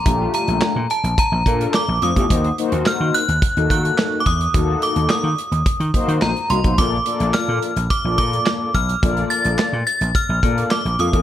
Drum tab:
HH |x-xx--xxx-xx--xx|xxxx--xxxxxx--xx|x-xx--xxxxxx-xxx|x-xx--xxx-xx--xx|
CP |----x-------x---|----x-------x---|----x-------x---|----x-------x---|
SD |----o-------o---|----o-------o---|----o-------o---|----o-------o---|
BD |o-------o-o----o|o-------o-o---o-|o-------o-o----o|o-------o-o---o-|

HH |xxxx--xxx-xx-xxx|
CP |----x-------x---|
SD |----o-------o---|
BD |o-------o-o----o|